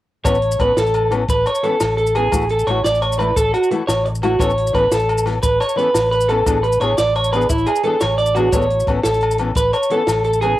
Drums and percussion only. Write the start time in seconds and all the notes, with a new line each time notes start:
0.25 kick, closed hi-hat, low agogo, maracas
0.35 maracas
0.42 closed hi-hat
0.52 maracas
0.59 kick, closed hi-hat, low agogo
0.77 snare, closed hi-hat, maracas
0.86 maracas
0.94 closed hi-hat, low agogo
1.11 closed hi-hat, low agogo
1.28 kick, closed hi-hat, maracas
1.46 closed hi-hat, low agogo, maracas
1.55 maracas
1.63 closed hi-hat
1.80 snare, closed hi-hat, low agogo, maracas
1.98 closed hi-hat
2.07 maracas
2.15 closed hi-hat, low agogo
2.32 kick, closed hi-hat, low agogo, maracas
2.49 closed hi-hat
2.59 maracas
2.67 closed hi-hat, low agogo
2.84 snare, closed hi-hat, maracas
2.95 maracas
3.02 closed hi-hat, low agogo
3.12 maracas
3.19 closed hi-hat, low agogo
3.36 kick, closed hi-hat, maracas
3.54 closed hi-hat, low agogo, maracas
3.63 maracas
3.71 closed hi-hat
3.88 snare, closed hi-hat, low agogo, maracas
4.05 closed hi-hat
4.15 maracas
4.23 closed hi-hat, low agogo
4.40 kick, closed hi-hat, low agogo, maracas
4.50 maracas
4.58 closed hi-hat
4.67 maracas
4.74 kick, closed hi-hat, low agogo
4.91 snare, closed hi-hat, maracas
4.99 maracas
5.09 closed hi-hat, low agogo
5.18 maracas
5.26 snare, closed hi-hat, low agogo
5.43 kick, closed hi-hat, maracas
5.60 closed hi-hat, low agogo, maracas
5.69 maracas
5.78 closed hi-hat
5.94 snare, closed hi-hat, low agogo, maracas
6.12 closed hi-hat
6.21 maracas
6.29 closed hi-hat, low agogo
6.46 kick, closed hi-hat, low agogo, maracas
6.64 closed hi-hat
6.72 maracas
6.81 closed hi-hat, low agogo
6.98 snare, closed hi-hat, maracas
7.15 closed hi-hat, low agogo
7.24 maracas
7.33 closed hi-hat, low agogo
7.42 maracas
7.49 kick, closed hi-hat, maracas
7.58 maracas
7.66 closed hi-hat, low agogo, maracas
7.76 maracas
7.83 closed hi-hat
8.01 snare, closed hi-hat, low agogo, maracas
8.18 closed hi-hat
8.26 maracas
8.35 closed hi-hat, low agogo, maracas
8.52 kick, closed hi-hat, low agogo, maracas
8.62 maracas
8.70 closed hi-hat
8.80 maracas
8.87 kick, closed hi-hat, low agogo
9.03 snare, closed hi-hat, maracas
9.14 maracas
9.20 closed hi-hat, low agogo
9.31 maracas
9.38 closed hi-hat, low agogo
9.55 kick, closed hi-hat, maracas
9.73 closed hi-hat, low agogo, maracas
9.83 maracas
9.90 closed hi-hat
10.07 snare, closed hi-hat, low agogo, maracas
10.24 closed hi-hat
10.33 maracas
10.42 closed hi-hat, low agogo